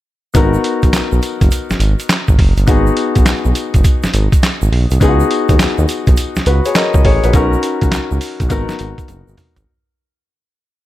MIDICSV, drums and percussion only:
0, 0, Header, 1, 2, 480
1, 0, Start_track
1, 0, Key_signature, 5, "minor"
1, 0, Tempo, 582524
1, 286, Time_signature, 4, 2, 24, 8
1, 8944, End_track
2, 0, Start_track
2, 0, Title_t, "Drums"
2, 284, Note_on_c, 9, 82, 62
2, 286, Note_on_c, 9, 42, 68
2, 287, Note_on_c, 9, 36, 112
2, 287, Note_on_c, 9, 54, 68
2, 367, Note_off_c, 9, 82, 0
2, 369, Note_off_c, 9, 36, 0
2, 369, Note_off_c, 9, 42, 0
2, 369, Note_off_c, 9, 54, 0
2, 442, Note_on_c, 9, 82, 54
2, 525, Note_off_c, 9, 82, 0
2, 528, Note_on_c, 9, 54, 71
2, 529, Note_on_c, 9, 42, 83
2, 610, Note_off_c, 9, 54, 0
2, 611, Note_off_c, 9, 42, 0
2, 682, Note_on_c, 9, 82, 53
2, 685, Note_on_c, 9, 36, 95
2, 685, Note_on_c, 9, 42, 52
2, 765, Note_off_c, 9, 82, 0
2, 766, Note_on_c, 9, 38, 105
2, 766, Note_on_c, 9, 54, 88
2, 767, Note_off_c, 9, 36, 0
2, 767, Note_off_c, 9, 42, 0
2, 768, Note_on_c, 9, 42, 72
2, 769, Note_on_c, 9, 82, 69
2, 775, Note_on_c, 9, 39, 88
2, 848, Note_off_c, 9, 54, 0
2, 849, Note_off_c, 9, 38, 0
2, 850, Note_off_c, 9, 42, 0
2, 851, Note_off_c, 9, 82, 0
2, 857, Note_off_c, 9, 39, 0
2, 922, Note_on_c, 9, 82, 47
2, 1004, Note_off_c, 9, 82, 0
2, 1008, Note_on_c, 9, 82, 55
2, 1011, Note_on_c, 9, 42, 73
2, 1012, Note_on_c, 9, 54, 69
2, 1091, Note_off_c, 9, 82, 0
2, 1093, Note_off_c, 9, 42, 0
2, 1094, Note_off_c, 9, 54, 0
2, 1164, Note_on_c, 9, 36, 89
2, 1164, Note_on_c, 9, 42, 49
2, 1168, Note_on_c, 9, 82, 49
2, 1247, Note_off_c, 9, 36, 0
2, 1247, Note_off_c, 9, 42, 0
2, 1247, Note_off_c, 9, 82, 0
2, 1247, Note_on_c, 9, 82, 72
2, 1251, Note_on_c, 9, 42, 75
2, 1252, Note_on_c, 9, 54, 66
2, 1329, Note_off_c, 9, 82, 0
2, 1333, Note_off_c, 9, 42, 0
2, 1334, Note_off_c, 9, 54, 0
2, 1402, Note_on_c, 9, 82, 58
2, 1407, Note_on_c, 9, 38, 72
2, 1485, Note_off_c, 9, 82, 0
2, 1485, Note_on_c, 9, 42, 85
2, 1486, Note_on_c, 9, 54, 64
2, 1486, Note_on_c, 9, 82, 39
2, 1489, Note_off_c, 9, 38, 0
2, 1568, Note_off_c, 9, 42, 0
2, 1568, Note_off_c, 9, 54, 0
2, 1568, Note_off_c, 9, 82, 0
2, 1644, Note_on_c, 9, 82, 57
2, 1645, Note_on_c, 9, 42, 57
2, 1724, Note_on_c, 9, 54, 97
2, 1725, Note_on_c, 9, 38, 106
2, 1726, Note_off_c, 9, 42, 0
2, 1726, Note_off_c, 9, 82, 0
2, 1726, Note_on_c, 9, 42, 73
2, 1727, Note_on_c, 9, 82, 65
2, 1733, Note_on_c, 9, 39, 95
2, 1806, Note_off_c, 9, 54, 0
2, 1807, Note_off_c, 9, 38, 0
2, 1809, Note_off_c, 9, 42, 0
2, 1809, Note_off_c, 9, 82, 0
2, 1815, Note_off_c, 9, 39, 0
2, 1881, Note_on_c, 9, 36, 93
2, 1881, Note_on_c, 9, 82, 57
2, 1963, Note_off_c, 9, 82, 0
2, 1964, Note_off_c, 9, 36, 0
2, 1966, Note_on_c, 9, 36, 99
2, 1968, Note_on_c, 9, 46, 67
2, 2049, Note_off_c, 9, 36, 0
2, 2051, Note_off_c, 9, 46, 0
2, 2119, Note_on_c, 9, 82, 54
2, 2122, Note_on_c, 9, 42, 59
2, 2201, Note_off_c, 9, 82, 0
2, 2204, Note_on_c, 9, 82, 61
2, 2205, Note_off_c, 9, 42, 0
2, 2205, Note_on_c, 9, 42, 73
2, 2205, Note_on_c, 9, 54, 65
2, 2206, Note_on_c, 9, 36, 121
2, 2286, Note_off_c, 9, 82, 0
2, 2287, Note_off_c, 9, 42, 0
2, 2287, Note_off_c, 9, 54, 0
2, 2288, Note_off_c, 9, 36, 0
2, 2362, Note_on_c, 9, 82, 47
2, 2444, Note_on_c, 9, 54, 73
2, 2445, Note_off_c, 9, 82, 0
2, 2445, Note_on_c, 9, 42, 80
2, 2526, Note_off_c, 9, 54, 0
2, 2527, Note_off_c, 9, 42, 0
2, 2600, Note_on_c, 9, 42, 53
2, 2603, Note_on_c, 9, 36, 94
2, 2604, Note_on_c, 9, 82, 50
2, 2682, Note_off_c, 9, 42, 0
2, 2683, Note_on_c, 9, 38, 107
2, 2683, Note_on_c, 9, 54, 85
2, 2685, Note_off_c, 9, 36, 0
2, 2685, Note_on_c, 9, 42, 74
2, 2686, Note_off_c, 9, 82, 0
2, 2686, Note_on_c, 9, 82, 67
2, 2692, Note_on_c, 9, 39, 88
2, 2766, Note_off_c, 9, 38, 0
2, 2766, Note_off_c, 9, 54, 0
2, 2767, Note_off_c, 9, 42, 0
2, 2769, Note_off_c, 9, 82, 0
2, 2774, Note_off_c, 9, 39, 0
2, 2842, Note_on_c, 9, 82, 48
2, 2924, Note_off_c, 9, 82, 0
2, 2927, Note_on_c, 9, 42, 78
2, 2928, Note_on_c, 9, 54, 73
2, 2928, Note_on_c, 9, 82, 59
2, 3009, Note_off_c, 9, 42, 0
2, 3010, Note_off_c, 9, 54, 0
2, 3011, Note_off_c, 9, 82, 0
2, 3081, Note_on_c, 9, 42, 52
2, 3084, Note_on_c, 9, 36, 84
2, 3086, Note_on_c, 9, 82, 49
2, 3163, Note_off_c, 9, 42, 0
2, 3166, Note_off_c, 9, 36, 0
2, 3166, Note_off_c, 9, 82, 0
2, 3166, Note_on_c, 9, 82, 71
2, 3167, Note_on_c, 9, 36, 99
2, 3169, Note_on_c, 9, 42, 78
2, 3170, Note_on_c, 9, 54, 69
2, 3249, Note_off_c, 9, 82, 0
2, 3250, Note_off_c, 9, 36, 0
2, 3252, Note_off_c, 9, 42, 0
2, 3252, Note_off_c, 9, 54, 0
2, 3321, Note_on_c, 9, 82, 57
2, 3326, Note_on_c, 9, 38, 74
2, 3404, Note_off_c, 9, 82, 0
2, 3408, Note_off_c, 9, 38, 0
2, 3408, Note_on_c, 9, 42, 81
2, 3408, Note_on_c, 9, 54, 69
2, 3408, Note_on_c, 9, 82, 41
2, 3490, Note_off_c, 9, 42, 0
2, 3491, Note_off_c, 9, 54, 0
2, 3491, Note_off_c, 9, 82, 0
2, 3563, Note_on_c, 9, 36, 98
2, 3567, Note_on_c, 9, 42, 58
2, 3567, Note_on_c, 9, 82, 58
2, 3645, Note_off_c, 9, 36, 0
2, 3649, Note_off_c, 9, 82, 0
2, 3650, Note_off_c, 9, 42, 0
2, 3650, Note_on_c, 9, 54, 91
2, 3651, Note_on_c, 9, 38, 112
2, 3651, Note_on_c, 9, 82, 61
2, 3653, Note_on_c, 9, 42, 68
2, 3659, Note_on_c, 9, 39, 86
2, 3733, Note_off_c, 9, 38, 0
2, 3733, Note_off_c, 9, 54, 0
2, 3733, Note_off_c, 9, 82, 0
2, 3735, Note_off_c, 9, 42, 0
2, 3742, Note_off_c, 9, 39, 0
2, 3804, Note_on_c, 9, 82, 58
2, 3887, Note_off_c, 9, 82, 0
2, 3894, Note_on_c, 9, 46, 62
2, 3976, Note_off_c, 9, 46, 0
2, 4043, Note_on_c, 9, 82, 53
2, 4050, Note_on_c, 9, 42, 59
2, 4126, Note_off_c, 9, 82, 0
2, 4128, Note_on_c, 9, 36, 116
2, 4128, Note_on_c, 9, 82, 60
2, 4131, Note_off_c, 9, 42, 0
2, 4131, Note_on_c, 9, 42, 66
2, 4131, Note_on_c, 9, 54, 66
2, 4210, Note_off_c, 9, 36, 0
2, 4211, Note_off_c, 9, 82, 0
2, 4213, Note_off_c, 9, 42, 0
2, 4213, Note_off_c, 9, 54, 0
2, 4286, Note_on_c, 9, 82, 53
2, 4368, Note_off_c, 9, 82, 0
2, 4372, Note_on_c, 9, 54, 72
2, 4373, Note_on_c, 9, 42, 80
2, 4454, Note_off_c, 9, 54, 0
2, 4455, Note_off_c, 9, 42, 0
2, 4523, Note_on_c, 9, 82, 53
2, 4525, Note_on_c, 9, 36, 102
2, 4526, Note_on_c, 9, 42, 48
2, 4605, Note_off_c, 9, 82, 0
2, 4608, Note_off_c, 9, 36, 0
2, 4608, Note_off_c, 9, 42, 0
2, 4608, Note_on_c, 9, 38, 108
2, 4608, Note_on_c, 9, 54, 87
2, 4609, Note_on_c, 9, 82, 69
2, 4610, Note_on_c, 9, 42, 72
2, 4617, Note_on_c, 9, 39, 85
2, 4691, Note_off_c, 9, 38, 0
2, 4691, Note_off_c, 9, 54, 0
2, 4691, Note_off_c, 9, 82, 0
2, 4692, Note_off_c, 9, 42, 0
2, 4699, Note_off_c, 9, 39, 0
2, 4765, Note_on_c, 9, 82, 50
2, 4847, Note_off_c, 9, 82, 0
2, 4848, Note_on_c, 9, 82, 57
2, 4852, Note_on_c, 9, 42, 76
2, 4853, Note_on_c, 9, 54, 72
2, 4930, Note_off_c, 9, 82, 0
2, 4934, Note_off_c, 9, 42, 0
2, 4935, Note_off_c, 9, 54, 0
2, 5002, Note_on_c, 9, 82, 53
2, 5003, Note_on_c, 9, 42, 51
2, 5004, Note_on_c, 9, 36, 92
2, 5082, Note_off_c, 9, 82, 0
2, 5082, Note_on_c, 9, 82, 74
2, 5086, Note_off_c, 9, 42, 0
2, 5087, Note_off_c, 9, 36, 0
2, 5088, Note_on_c, 9, 42, 75
2, 5088, Note_on_c, 9, 54, 74
2, 5165, Note_off_c, 9, 82, 0
2, 5170, Note_off_c, 9, 42, 0
2, 5171, Note_off_c, 9, 54, 0
2, 5239, Note_on_c, 9, 82, 55
2, 5246, Note_on_c, 9, 38, 72
2, 5322, Note_off_c, 9, 82, 0
2, 5324, Note_on_c, 9, 42, 77
2, 5324, Note_on_c, 9, 82, 44
2, 5325, Note_on_c, 9, 54, 65
2, 5328, Note_off_c, 9, 38, 0
2, 5406, Note_off_c, 9, 82, 0
2, 5407, Note_off_c, 9, 42, 0
2, 5407, Note_off_c, 9, 54, 0
2, 5481, Note_on_c, 9, 82, 55
2, 5484, Note_on_c, 9, 42, 59
2, 5561, Note_off_c, 9, 82, 0
2, 5561, Note_on_c, 9, 82, 65
2, 5562, Note_on_c, 9, 54, 91
2, 5563, Note_on_c, 9, 38, 106
2, 5565, Note_off_c, 9, 42, 0
2, 5565, Note_on_c, 9, 42, 65
2, 5571, Note_on_c, 9, 39, 91
2, 5644, Note_off_c, 9, 82, 0
2, 5645, Note_off_c, 9, 38, 0
2, 5645, Note_off_c, 9, 54, 0
2, 5647, Note_off_c, 9, 42, 0
2, 5654, Note_off_c, 9, 39, 0
2, 5719, Note_on_c, 9, 82, 57
2, 5721, Note_on_c, 9, 36, 91
2, 5801, Note_off_c, 9, 82, 0
2, 5803, Note_off_c, 9, 36, 0
2, 5806, Note_on_c, 9, 46, 67
2, 5807, Note_on_c, 9, 36, 95
2, 5889, Note_off_c, 9, 36, 0
2, 5889, Note_off_c, 9, 46, 0
2, 5962, Note_on_c, 9, 42, 56
2, 5962, Note_on_c, 9, 82, 55
2, 6043, Note_off_c, 9, 42, 0
2, 6043, Note_on_c, 9, 42, 64
2, 6043, Note_on_c, 9, 54, 67
2, 6044, Note_off_c, 9, 82, 0
2, 6045, Note_on_c, 9, 36, 113
2, 6045, Note_on_c, 9, 82, 60
2, 6125, Note_off_c, 9, 42, 0
2, 6125, Note_off_c, 9, 54, 0
2, 6128, Note_off_c, 9, 36, 0
2, 6128, Note_off_c, 9, 82, 0
2, 6205, Note_on_c, 9, 82, 54
2, 6285, Note_on_c, 9, 54, 73
2, 6286, Note_off_c, 9, 82, 0
2, 6286, Note_on_c, 9, 42, 89
2, 6286, Note_on_c, 9, 82, 45
2, 6367, Note_off_c, 9, 54, 0
2, 6368, Note_off_c, 9, 42, 0
2, 6368, Note_off_c, 9, 82, 0
2, 6439, Note_on_c, 9, 42, 54
2, 6443, Note_on_c, 9, 36, 99
2, 6447, Note_on_c, 9, 82, 52
2, 6522, Note_off_c, 9, 42, 0
2, 6522, Note_on_c, 9, 38, 104
2, 6522, Note_on_c, 9, 54, 87
2, 6524, Note_on_c, 9, 42, 74
2, 6525, Note_off_c, 9, 36, 0
2, 6530, Note_off_c, 9, 82, 0
2, 6530, Note_on_c, 9, 39, 85
2, 6532, Note_on_c, 9, 82, 65
2, 6604, Note_off_c, 9, 38, 0
2, 6604, Note_off_c, 9, 54, 0
2, 6606, Note_off_c, 9, 42, 0
2, 6613, Note_off_c, 9, 39, 0
2, 6614, Note_off_c, 9, 82, 0
2, 6685, Note_on_c, 9, 82, 46
2, 6764, Note_on_c, 9, 46, 79
2, 6765, Note_on_c, 9, 54, 66
2, 6768, Note_off_c, 9, 82, 0
2, 6769, Note_on_c, 9, 82, 57
2, 6847, Note_off_c, 9, 46, 0
2, 6848, Note_off_c, 9, 54, 0
2, 6851, Note_off_c, 9, 82, 0
2, 6921, Note_on_c, 9, 42, 49
2, 6923, Note_on_c, 9, 36, 93
2, 6929, Note_on_c, 9, 82, 51
2, 7003, Note_off_c, 9, 42, 0
2, 7004, Note_on_c, 9, 42, 73
2, 7004, Note_on_c, 9, 54, 72
2, 7005, Note_off_c, 9, 36, 0
2, 7006, Note_off_c, 9, 82, 0
2, 7006, Note_on_c, 9, 36, 105
2, 7006, Note_on_c, 9, 82, 74
2, 7086, Note_off_c, 9, 42, 0
2, 7087, Note_off_c, 9, 54, 0
2, 7088, Note_off_c, 9, 36, 0
2, 7089, Note_off_c, 9, 82, 0
2, 7159, Note_on_c, 9, 82, 56
2, 7160, Note_on_c, 9, 38, 72
2, 7242, Note_off_c, 9, 38, 0
2, 7242, Note_off_c, 9, 82, 0
2, 7242, Note_on_c, 9, 42, 82
2, 7242, Note_on_c, 9, 54, 63
2, 7248, Note_on_c, 9, 82, 46
2, 7324, Note_off_c, 9, 42, 0
2, 7325, Note_off_c, 9, 54, 0
2, 7331, Note_off_c, 9, 82, 0
2, 7400, Note_on_c, 9, 36, 100
2, 7400, Note_on_c, 9, 42, 57
2, 7406, Note_on_c, 9, 82, 56
2, 7483, Note_off_c, 9, 36, 0
2, 7483, Note_off_c, 9, 42, 0
2, 7483, Note_on_c, 9, 48, 58
2, 7484, Note_on_c, 9, 42, 65
2, 7488, Note_off_c, 9, 82, 0
2, 7488, Note_on_c, 9, 82, 68
2, 7565, Note_off_c, 9, 48, 0
2, 7566, Note_off_c, 9, 42, 0
2, 7571, Note_off_c, 9, 82, 0
2, 7646, Note_on_c, 9, 82, 51
2, 7725, Note_on_c, 9, 45, 90
2, 7727, Note_off_c, 9, 82, 0
2, 7727, Note_on_c, 9, 46, 63
2, 7727, Note_on_c, 9, 82, 51
2, 7807, Note_off_c, 9, 45, 0
2, 7809, Note_off_c, 9, 46, 0
2, 7809, Note_off_c, 9, 82, 0
2, 7881, Note_on_c, 9, 43, 91
2, 7882, Note_on_c, 9, 42, 57
2, 7883, Note_on_c, 9, 82, 62
2, 7964, Note_off_c, 9, 43, 0
2, 7965, Note_off_c, 9, 42, 0
2, 7966, Note_off_c, 9, 82, 0
2, 8944, End_track
0, 0, End_of_file